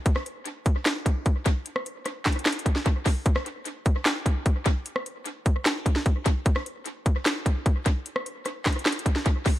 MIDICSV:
0, 0, Header, 1, 2, 480
1, 0, Start_track
1, 0, Tempo, 400000
1, 70, Time_signature, 4, 2, 24, 8
1, 11510, End_track
2, 0, Start_track
2, 0, Title_t, "Drums"
2, 69, Note_on_c, 9, 36, 115
2, 69, Note_on_c, 9, 42, 81
2, 189, Note_off_c, 9, 36, 0
2, 189, Note_off_c, 9, 42, 0
2, 189, Note_on_c, 9, 37, 95
2, 309, Note_off_c, 9, 37, 0
2, 314, Note_on_c, 9, 42, 69
2, 434, Note_off_c, 9, 42, 0
2, 546, Note_on_c, 9, 42, 78
2, 666, Note_off_c, 9, 42, 0
2, 790, Note_on_c, 9, 36, 98
2, 790, Note_on_c, 9, 42, 74
2, 910, Note_off_c, 9, 36, 0
2, 910, Note_off_c, 9, 42, 0
2, 1028, Note_on_c, 9, 39, 103
2, 1030, Note_on_c, 9, 38, 126
2, 1037, Note_on_c, 9, 42, 83
2, 1148, Note_off_c, 9, 39, 0
2, 1150, Note_off_c, 9, 38, 0
2, 1157, Note_off_c, 9, 42, 0
2, 1269, Note_on_c, 9, 36, 93
2, 1273, Note_on_c, 9, 42, 84
2, 1389, Note_off_c, 9, 36, 0
2, 1393, Note_off_c, 9, 42, 0
2, 1509, Note_on_c, 9, 42, 64
2, 1510, Note_on_c, 9, 36, 100
2, 1629, Note_off_c, 9, 42, 0
2, 1630, Note_off_c, 9, 36, 0
2, 1749, Note_on_c, 9, 42, 81
2, 1750, Note_on_c, 9, 36, 98
2, 1869, Note_off_c, 9, 42, 0
2, 1870, Note_off_c, 9, 36, 0
2, 1989, Note_on_c, 9, 42, 81
2, 2109, Note_off_c, 9, 42, 0
2, 2110, Note_on_c, 9, 37, 97
2, 2230, Note_off_c, 9, 37, 0
2, 2234, Note_on_c, 9, 42, 68
2, 2354, Note_off_c, 9, 42, 0
2, 2466, Note_on_c, 9, 42, 76
2, 2469, Note_on_c, 9, 37, 66
2, 2586, Note_off_c, 9, 42, 0
2, 2589, Note_off_c, 9, 37, 0
2, 2707, Note_on_c, 9, 39, 75
2, 2709, Note_on_c, 9, 38, 94
2, 2709, Note_on_c, 9, 42, 46
2, 2710, Note_on_c, 9, 36, 99
2, 2790, Note_off_c, 9, 42, 0
2, 2790, Note_on_c, 9, 42, 52
2, 2827, Note_off_c, 9, 39, 0
2, 2829, Note_off_c, 9, 38, 0
2, 2830, Note_off_c, 9, 36, 0
2, 2869, Note_off_c, 9, 42, 0
2, 2869, Note_on_c, 9, 42, 61
2, 2948, Note_on_c, 9, 39, 105
2, 2949, Note_off_c, 9, 42, 0
2, 2949, Note_on_c, 9, 38, 122
2, 2949, Note_on_c, 9, 42, 67
2, 3029, Note_off_c, 9, 42, 0
2, 3029, Note_on_c, 9, 42, 73
2, 3068, Note_off_c, 9, 39, 0
2, 3069, Note_off_c, 9, 38, 0
2, 3110, Note_off_c, 9, 42, 0
2, 3110, Note_on_c, 9, 42, 79
2, 3189, Note_on_c, 9, 36, 93
2, 3192, Note_off_c, 9, 42, 0
2, 3192, Note_on_c, 9, 42, 83
2, 3309, Note_off_c, 9, 36, 0
2, 3309, Note_on_c, 9, 38, 72
2, 3312, Note_off_c, 9, 42, 0
2, 3429, Note_off_c, 9, 38, 0
2, 3429, Note_on_c, 9, 42, 63
2, 3430, Note_on_c, 9, 36, 101
2, 3549, Note_off_c, 9, 42, 0
2, 3550, Note_off_c, 9, 36, 0
2, 3668, Note_on_c, 9, 46, 78
2, 3669, Note_on_c, 9, 36, 98
2, 3788, Note_off_c, 9, 46, 0
2, 3789, Note_off_c, 9, 36, 0
2, 3909, Note_on_c, 9, 36, 114
2, 3909, Note_on_c, 9, 42, 79
2, 4029, Note_off_c, 9, 36, 0
2, 4029, Note_off_c, 9, 42, 0
2, 4029, Note_on_c, 9, 37, 100
2, 4149, Note_off_c, 9, 37, 0
2, 4153, Note_on_c, 9, 42, 70
2, 4273, Note_off_c, 9, 42, 0
2, 4386, Note_on_c, 9, 42, 76
2, 4506, Note_off_c, 9, 42, 0
2, 4629, Note_on_c, 9, 42, 74
2, 4630, Note_on_c, 9, 36, 99
2, 4749, Note_off_c, 9, 42, 0
2, 4750, Note_off_c, 9, 36, 0
2, 4867, Note_on_c, 9, 39, 103
2, 4869, Note_on_c, 9, 38, 125
2, 4875, Note_on_c, 9, 42, 86
2, 4987, Note_off_c, 9, 39, 0
2, 4989, Note_off_c, 9, 38, 0
2, 4995, Note_off_c, 9, 42, 0
2, 5109, Note_on_c, 9, 36, 90
2, 5112, Note_on_c, 9, 42, 84
2, 5229, Note_off_c, 9, 36, 0
2, 5232, Note_off_c, 9, 42, 0
2, 5349, Note_on_c, 9, 42, 66
2, 5350, Note_on_c, 9, 36, 106
2, 5469, Note_off_c, 9, 42, 0
2, 5470, Note_off_c, 9, 36, 0
2, 5588, Note_on_c, 9, 42, 80
2, 5589, Note_on_c, 9, 36, 100
2, 5708, Note_off_c, 9, 42, 0
2, 5709, Note_off_c, 9, 36, 0
2, 5829, Note_on_c, 9, 42, 80
2, 5949, Note_off_c, 9, 42, 0
2, 5949, Note_on_c, 9, 37, 96
2, 6069, Note_off_c, 9, 37, 0
2, 6074, Note_on_c, 9, 42, 68
2, 6194, Note_off_c, 9, 42, 0
2, 6307, Note_on_c, 9, 42, 78
2, 6427, Note_off_c, 9, 42, 0
2, 6550, Note_on_c, 9, 36, 97
2, 6550, Note_on_c, 9, 42, 76
2, 6670, Note_off_c, 9, 36, 0
2, 6670, Note_off_c, 9, 42, 0
2, 6788, Note_on_c, 9, 39, 105
2, 6789, Note_on_c, 9, 38, 125
2, 6796, Note_on_c, 9, 42, 87
2, 6908, Note_off_c, 9, 39, 0
2, 6909, Note_off_c, 9, 38, 0
2, 6916, Note_off_c, 9, 42, 0
2, 7029, Note_on_c, 9, 36, 91
2, 7033, Note_on_c, 9, 42, 80
2, 7149, Note_off_c, 9, 36, 0
2, 7149, Note_on_c, 9, 38, 71
2, 7153, Note_off_c, 9, 42, 0
2, 7269, Note_off_c, 9, 38, 0
2, 7269, Note_on_c, 9, 42, 67
2, 7270, Note_on_c, 9, 36, 104
2, 7389, Note_off_c, 9, 42, 0
2, 7390, Note_off_c, 9, 36, 0
2, 7509, Note_on_c, 9, 42, 83
2, 7510, Note_on_c, 9, 36, 100
2, 7629, Note_off_c, 9, 42, 0
2, 7630, Note_off_c, 9, 36, 0
2, 7749, Note_on_c, 9, 42, 80
2, 7750, Note_on_c, 9, 36, 118
2, 7869, Note_off_c, 9, 42, 0
2, 7870, Note_off_c, 9, 36, 0
2, 7870, Note_on_c, 9, 37, 99
2, 7990, Note_off_c, 9, 37, 0
2, 7995, Note_on_c, 9, 42, 68
2, 8115, Note_off_c, 9, 42, 0
2, 8227, Note_on_c, 9, 42, 75
2, 8347, Note_off_c, 9, 42, 0
2, 8470, Note_on_c, 9, 36, 97
2, 8471, Note_on_c, 9, 42, 74
2, 8590, Note_off_c, 9, 36, 0
2, 8591, Note_off_c, 9, 42, 0
2, 8709, Note_on_c, 9, 39, 100
2, 8710, Note_on_c, 9, 38, 126
2, 8717, Note_on_c, 9, 42, 88
2, 8829, Note_off_c, 9, 39, 0
2, 8830, Note_off_c, 9, 38, 0
2, 8837, Note_off_c, 9, 42, 0
2, 8950, Note_on_c, 9, 36, 92
2, 8953, Note_on_c, 9, 42, 81
2, 9070, Note_off_c, 9, 36, 0
2, 9073, Note_off_c, 9, 42, 0
2, 9190, Note_on_c, 9, 36, 105
2, 9190, Note_on_c, 9, 42, 66
2, 9310, Note_off_c, 9, 36, 0
2, 9310, Note_off_c, 9, 42, 0
2, 9430, Note_on_c, 9, 36, 98
2, 9430, Note_on_c, 9, 42, 81
2, 9550, Note_off_c, 9, 36, 0
2, 9550, Note_off_c, 9, 42, 0
2, 9670, Note_on_c, 9, 42, 77
2, 9790, Note_off_c, 9, 42, 0
2, 9790, Note_on_c, 9, 37, 99
2, 9910, Note_off_c, 9, 37, 0
2, 9914, Note_on_c, 9, 42, 67
2, 10034, Note_off_c, 9, 42, 0
2, 10146, Note_on_c, 9, 42, 77
2, 10149, Note_on_c, 9, 37, 66
2, 10266, Note_off_c, 9, 42, 0
2, 10269, Note_off_c, 9, 37, 0
2, 10387, Note_on_c, 9, 39, 77
2, 10389, Note_on_c, 9, 38, 89
2, 10389, Note_on_c, 9, 42, 45
2, 10390, Note_on_c, 9, 36, 102
2, 10470, Note_off_c, 9, 42, 0
2, 10470, Note_on_c, 9, 42, 51
2, 10507, Note_off_c, 9, 39, 0
2, 10509, Note_off_c, 9, 38, 0
2, 10510, Note_off_c, 9, 36, 0
2, 10549, Note_off_c, 9, 42, 0
2, 10549, Note_on_c, 9, 42, 62
2, 10628, Note_on_c, 9, 39, 104
2, 10629, Note_off_c, 9, 42, 0
2, 10629, Note_on_c, 9, 38, 127
2, 10629, Note_on_c, 9, 42, 68
2, 10709, Note_off_c, 9, 42, 0
2, 10709, Note_on_c, 9, 42, 73
2, 10748, Note_off_c, 9, 39, 0
2, 10749, Note_off_c, 9, 38, 0
2, 10789, Note_off_c, 9, 42, 0
2, 10789, Note_on_c, 9, 42, 81
2, 10869, Note_on_c, 9, 36, 93
2, 10872, Note_off_c, 9, 42, 0
2, 10872, Note_on_c, 9, 42, 83
2, 10989, Note_off_c, 9, 36, 0
2, 10989, Note_on_c, 9, 38, 69
2, 10992, Note_off_c, 9, 42, 0
2, 11108, Note_on_c, 9, 42, 64
2, 11109, Note_off_c, 9, 38, 0
2, 11110, Note_on_c, 9, 36, 100
2, 11228, Note_off_c, 9, 42, 0
2, 11230, Note_off_c, 9, 36, 0
2, 11348, Note_on_c, 9, 46, 83
2, 11349, Note_on_c, 9, 36, 100
2, 11468, Note_off_c, 9, 46, 0
2, 11469, Note_off_c, 9, 36, 0
2, 11510, End_track
0, 0, End_of_file